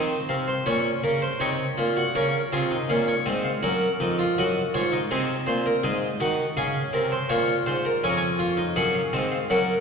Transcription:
Already playing: D#3 C4 D#5
0.29 C3 F5
0.48 C5
0.66 A#2 C#4 C#5
1.04 C#3 A#4
1.22 C5
1.40 C3 D#4 C#5
1.78 A#2 F4
1.97 F#4
2.15 C#3 C#4 A#4 C#5
2.52 C3 F4 G#4
2.71 D#4
2.89 A#2 C#4 F5
3.08 C#5
3.26 G#2 C4 D#5
3.44 F5
3.63 F#2 C#4 A#4 F#5
4.00 F2 D#4
4.19 F4
4.38 F#2 F#4 D#5
4.74 G#2 F4 C#5
4.92 D#4
5.11 C3 C4 G#4 D#5
5.47 A#2 C5
5.66 A#4
5.83 G#2 D#4 G#4
6.20 D#3 F#4
6.57 C#3 C#4 G#4 F5
6.93 C3 A#4
7.12 C5
7.29 A#2 F4 C#5 F5
7.66 G#2 C5
7.85 A#4
8.04 F2 C#4 C#5 G#5
8.10 A#5
8.17 G#5
8.39 F4
8.57 D#4
8.76 F#2 C#4 G#4 F#5
8.95 F5
9.13 G#2 C4 D#5
9.32 F5
9.50 F#2 C#4 A#4 F#5

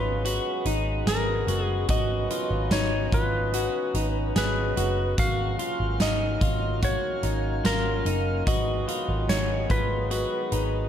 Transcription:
Already playing: G#1 C#3 F#3 G#3 B3 F4 B4
0.25 F#4, closed hi-hat
0.65 G#1 D#4, closed hi-hat
1.06 G#1 G#4 A#4, snare, closed hi-hat, tambourine
1.47 F#1 F#4, closed hi-hat
1.65 G#4
1.88 G#1 F#3 B3 D#4 F#4 D#5, kick, closed hi-hat
2.30 F4, closed hi-hat
2.51 G#1
2.71 G#1 D#4 C#5, snare, closed hi-hat, tambourine
3.12 G#1 F4 B4, kick, closed hi-hat
3.54 F#4, closed hi-hat
3.94 G#1 D#4, closed hi-hat
4.36 G#1 G#4 B4, snare, closed hi-hat, tambourine
4.77 F#1 F#4, closed hi-hat
5.18 G#1 F#3 A#3 F#4 F5, kick, closed hi-hat
5.59 F4, closed hi-hat
5.80 G#1
6.00 G#1 D#4 D#5, snare, closed hi-hat, tambourine
6.41 G#1 F4, kick, closed hi-hat
6.83 F#4 C#5, kick, closed hi-hat
7.23 G#1 D#4, closed hi-hat
7.64 G#1 F4 A#4, snare, closed hi-hat, tambourine
8.05 F#1 D#4, closed hi-hat
8.46 G#1 D#3 F#3 G#3 B3 F#4 D#5, kick, closed hi-hat
8.88 F4, closed hi-hat
9.09 G#1
9.29 G#1 D#4 C#5, snare, closed hi-hat, tambourine
9.70 G#1 F4 B4, kick, closed hi-hat
10.11 F#4, closed hi-hat
10.52 G#1 D#4, closed hi-hat

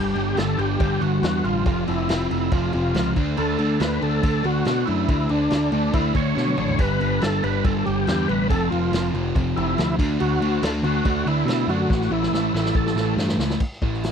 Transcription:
Already playing: G1 G2 D3 G3 G4
0.15 G1 G2 D3 G3, crash
0.37 G1 G2 D3 G3 A4, snare, crash
0.57 G1 G2 D3 G3 G4, crash
0.79 G1 G2 D3 G3, kick, crash
1.01 G1 G2 D3 G3 F#4, crash
1.22 E2 G2 D3 G3, snare, crash
1.44 A1 G2 D3 G3 F4, crash
1.65 F1 F2 C3 F3, kick, crash
1.87 F1 F2 C3 F3 E4, crash
2.08 F1 F2 C3 F3, snare, crash
2.30 F1 F2 C3 F3 E4, crash
2.52 F1 F2 C3 F3 F4, kick, crash
2.73 F1 F2 C3 F3 F4, crash
2.94 C#2 F2 C3 F3, snare, crash
3.16 D2 D3 A3 D4, kick, crash
3.37 D2 D3 A3 D4 A4, crash
3.58 D2 D3 A3 D4, crash
3.80 D2 D3 A3 D4 B4, snare, crash
4.01 D2 D3 A3 D4 A4, crash
4.22 D2 D3 A3 D4, kick, crash
4.43 D2 D3 A3 D4 F#4, crash
4.65 B2 D3 A3 D4, snare, crash
4.86 F#2 D3 A3 D4 E4, crash
5.08 D2 D3 A3 D4, kick, crash
5.29 D2 D3 A3 D4, crash
5.51 D2 D3 A3 D4, snare, crash
5.72 D2 D3 A3 D4, crash
5.93 D2 D3 A3 D4 E4, kick, crash
6.15 D2 D3 A3 D4 C#5, kick, crash
6.35 B2 D3 A3 D4, snare
6.47 high tom
6.58 A1 D3 A3 D4, mid tom
6.68 floor tom
6.79 G1 G2 D3 G3 B4, kick, crash
7.00 G1 G2 D3 G3, crash
7.21 G1 G2 D3 G3 A4, snare, crash
7.43 G1 G2 D3 G3 B4, crash
7.65 G1 G2 D3 G3 A4, kick, crash
7.78 A4
7.86 G1 G2 D3 G3 G4, crash
8.07 E2 G2 D3 G3, snare, crash
8.28 A1 G2 D3 G3 B4, crash
8.50 F1 F2 C3 F3 A4, kick, crash
8.70 F1 F2 C3 F3 F4, crash
8.92 F1 F2 C3 F3, snare, crash
9.14 F1 F2 C3 F3, crash
9.35 F1 F2 C3 F3, kick, crash
9.56 F1 F2 C3 F3 E4, crash
9.78 D2 F2 C3 F3, snare, crash
9.99 D2 D3 A3 D4, kick, crash
10.20 D2 D3 A3 D4 F#4, crash
10.41 D2 D3 A3 D4, crash
10.62 D2 D3 A3 D4 A4, snare, crash
10.83 D2 D3 A3 D4 F#4, crash
11.05 D2 D3 A3 D4, kick, crash
11.25 D2 D3 A3 D4 E4, crash
11.46 B2 D3 A3 D4, snare, crash
11.67 F#2 D3 A3 D4 F#4, crash
11.90 A1 A2 E3 A3, kick, snare
12.02 snare
12.10 A1 A2 E3 A3 E4
12.23 snare
12.32 A1 A2 E3 A3, snare
12.53 A1 A2 E3 A3 E4, snare
12.66 snare
12.75 A1 A2 E3 A3 A4, kick
12.86 snare
12.94 A1 A2 E3 A3, snare
13.17 G2 A2 E3 A3, snare
13.29 snare
13.38 C#2 A2 E3 A3, snare
13.50 snare
13.60 kick, crash
13.72 snare
13.82 A1 A2 E3 A3, kick
13.94 snare
14.03 snare, open hi-hat

